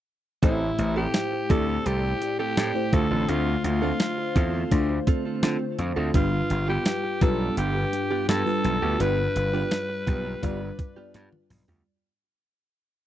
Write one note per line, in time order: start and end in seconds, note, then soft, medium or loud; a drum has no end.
0.43 0.69 A1 medium
0.43 1.46 A2 medium
0.43 1.22 A3 medium
0.43 0.64 C4 medium
0.43 1.22 E4 medium
0.43 0.93 E4 medium
0.43 0.61 G4 medium
0.43 1.23 G4 medium
0.43 0.60 A4 medium
0.43 1.23 C5 medium
0.43 kick loud
0.43 closed hi-hat medium
0.61 muted clean electric guitar stroke soft
0.78 1.05 A1 medium
0.78 muted clean electric guitar stroke soft
0.78 closed hi-hat medium
0.96 1.13 C4 soft
0.96 1.13 G4 soft
0.96 1.52 G4 loud
0.96 1.13 A4 medium
1.14 snare loud
1.14 closed hi-hat medium
1.32 muted clean electric guitar stroke soft
1.50 1.77 D2 medium
1.50 2.43 A3 medium
1.50 1.68 C4 medium
1.50 2.43 E4 medium
1.50 2.43 G4 medium
1.50 1.67 G4 medium
1.50 1.87 A4 medium
1.50 1.66 A4 loud
1.50 2.43 D5 medium
1.50 kick medium
1.50 closed hi-hat medium
1.68 1.85 C4 medium
1.68 1.84 G4 medium
1.68 1.84 A4 medium
1.86 2.12 C2 medium
1.86 2.07 C4 medium
1.86 2.39 G4 loud
1.86 2.03 G4 medium
1.86 2.02 A4 medium
1.86 closed hi-hat medium
2.04 muted clean electric guitar stroke soft
2.22 muted clean electric guitar stroke soft
2.22 closed hi-hat medium
2.39 2.56 C4 medium
2.39 2.95 G4 medium
2.39 2.56 G4 medium
2.39 2.56 A4 medium
2.57 2.71 A2 medium
2.57 2.78 C4 medium
2.57 2.75 G4 medium
2.57 2.74 A4 medium
2.57 snare loud
2.57 closed hi-hat medium
2.75 2.91 A3 medium
2.75 2.93 E4 medium
2.75 2.93 G4 medium
2.75 2.92 C5 medium
2.75 muted clean electric guitar stroke soft
2.92 3.06 D2 medium
2.92 3.96 D3 medium
2.92 3.64 A3 medium
2.92 3.64 D4 medium
2.92 3.64 F4 medium
2.92 3.31 A4 loud
2.92 3.65 C5 medium
2.92 muted clean electric guitar stroke soft
2.92 kick medium
2.92 closed hi-hat medium
3.10 3.24 A1 medium
3.10 3.27 C4 medium
3.10 3.27 F4 medium
3.10 3.27 A4 medium
3.28 3.55 D2 medium
3.28 3.49 C4 medium
3.28 3.64 F4 medium
3.28 3.46 F4 medium
3.28 3.45 A4 medium
3.28 closed hi-hat medium
3.47 muted clean electric guitar stroke soft
3.64 3.91 D2 medium
3.64 5.03 F4 medium
3.64 muted clean electric guitar stroke soft
3.64 closed hi-hat medium
3.82 4.48 A3 medium
3.82 3.99 C4 soft
3.82 4.48 D4 medium
3.82 3.99 F4 soft
3.82 4.49 F4 medium
3.82 3.98 A4 medium
3.82 4.49 C5 medium
4.00 snare loud
4.00 closed hi-hat medium
4.18 muted clean electric guitar stroke soft
4.36 4.63 E2 medium
4.36 4.54 C4 medium
4.36 4.53 F4 medium
4.36 4.53 A4 medium
4.36 kick medium
4.36 closed hi-hat medium
4.54 4.70 C4 medium
4.54 4.70 F4 medium
4.54 4.70 A4 medium
4.71 4.98 D2 medium
4.71 5.77 A3 medium
4.71 5.77 D4 medium
4.71 5.78 F4 medium
4.71 5.78 C5 medium
4.71 muted clean electric guitar stroke soft
4.71 kick medium
4.71 closed hi-hat medium
4.89 muted clean electric guitar stroke soft
5.07 5.25 C4 medium
5.07 5.25 F4 medium
5.07 5.24 A4 medium
5.07 kick medium
5.07 closed hi-hat medium
5.25 5.41 C4 medium
5.25 5.42 F4 medium
5.25 5.41 A4 medium
5.43 5.56 D3 loud
5.43 5.64 C4 medium
5.43 5.61 F4 medium
5.43 5.60 A4 medium
5.43 snare loud
5.43 closed hi-hat medium
5.61 muted clean electric guitar stroke soft
5.79 5.92 F2 medium
5.79 muted clean electric guitar stroke soft
5.79 closed hi-hat medium
5.96 6.10 D2 medium
5.96 6.13 C4 soft
5.96 6.13 F4 medium
5.96 6.13 A4 medium
6.14 6.41 G1 loud
6.14 7.17 G2 medium
6.14 6.94 G3 medium
6.14 6.35 B3 medium
6.14 6.94 D4 medium
6.14 6.94 F4 medium
6.14 6.32 F4 medium
6.14 6.65 F4 medium
6.14 6.31 G4 medium
6.14 6.94 B4 medium
6.14 kick loud
6.14 closed hi-hat medium
6.32 muted clean electric guitar stroke soft
6.50 6.77 G1 medium
6.50 muted clean electric guitar stroke soft
6.50 closed hi-hat medium
6.68 6.85 B3 medium
6.68 6.85 F4 medium
6.68 6.84 G4 medium
6.68 7.24 G4 medium
6.86 snare loud
6.86 closed hi-hat medium
7.04 muted clean electric guitar stroke soft
7.21 7.48 B1 medium
7.21 8.14 G3 medium
7.21 7.40 B3 medium
7.21 8.14 D4 medium
7.21 8.14 F4 medium
7.21 7.39 F4 medium
7.21 7.38 G4 medium
7.21 7.58 A4 medium
7.21 8.15 B4 medium
7.21 kick medium
7.21 closed hi-hat medium
7.39 7.56 B3 soft
7.39 7.56 F4 medium
7.39 7.56 G4 medium
7.57 7.84 G1 medium
7.57 7.78 B3 medium
7.57 7.75 F4 medium
7.57 8.25 G4 medium
7.57 7.74 G4 loud
7.57 closed hi-hat medium
7.75 muted clean electric guitar stroke soft
7.93 muted clean electric guitar stroke soft
7.93 closed hi-hat medium
8.11 8.27 B3 soft
8.11 8.27 F4 medium
8.11 8.27 G4 medium
8.28 8.42 G2 medium
8.28 8.49 B3 medium
8.28 8.46 F4 medium
8.28 8.45 G4 medium
8.28 9.03 A4 loud
8.28 snare loud
8.28 closed hi-hat medium
8.46 8.86 G3 medium
8.46 8.86 D4 medium
8.46 8.86 F4 medium
8.46 8.86 B4 medium
8.46 muted clean electric guitar stroke soft
8.64 8.78 B1 medium
8.64 muted clean electric guitar stroke soft
8.64 closed hi-hat medium
8.82 8.95 D2 medium
8.82 8.99 B3 medium
8.82 8.99 F4 medium
8.82 8.99 G4 medium
8.99 9.27 G1 medium
8.99 10.03 G2 medium
8.99 9.39 G3 medium
8.99 9.21 B3 medium
8.99 9.40 D4 medium
8.99 9.40 F4 medium
8.99 9.18 F4 medium
8.99 9.17 G4 medium
8.99 9.40 B4 medium
8.99 11.15 B4 loud
8.99 closed hi-hat medium
9.18 muted clean electric guitar stroke soft
9.36 9.62 G1 medium
9.36 muted clean electric guitar stroke soft
9.36 closed hi-hat medium
9.53 10.19 G3 medium
9.53 9.70 B3 soft
9.53 10.20 D4 medium
9.53 10.20 F4 medium
9.53 9.70 F4 medium
9.53 9.70 G4 medium
9.53 10.20 B4 medium
9.71 snare loud
9.71 closed hi-hat medium
9.89 muted clean electric guitar stroke soft
10.07 10.34 B1 medium
10.07 10.25 B3 medium
10.07 10.25 F4 medium
10.07 10.24 G4 medium
10.07 kick medium
10.07 closed hi-hat medium
10.25 10.41 B3 medium
10.25 10.42 F4 medium
10.25 10.41 G4 medium
10.42 10.70 G1 medium
10.42 11.49 G3 medium
10.42 10.64 B3 medium
10.42 11.49 D4 medium
10.42 11.49 F4 medium
10.42 10.61 F4 medium
10.42 10.60 G4 medium
10.42 11.49 D5 medium
10.42 kick medium
10.42 closed hi-hat medium
10.61 muted clean electric guitar stroke soft
10.79 muted clean electric guitar stroke soft
10.79 kick medium
10.79 closed hi-hat medium
10.97 11.13 B3 medium
10.97 11.13 F4 medium
10.97 11.13 G4 medium
11.14 11.28 G2 medium
11.14 11.35 B3 medium
11.14 11.32 F4 medium
11.14 11.31 G4 medium
11.14 snare medium
11.14 closed hi-hat medium
11.32 high tom medium
11.50 11.64 B1 medium
11.50 muted clean electric guitar stroke soft
11.50 mid tom medium
11.50 open hi-hat medium
11.68 11.81 D2 medium
11.68 11.85 B3 medium
11.68 11.85 F4 medium
11.68 11.84 G4 medium
11.68 floor tom medium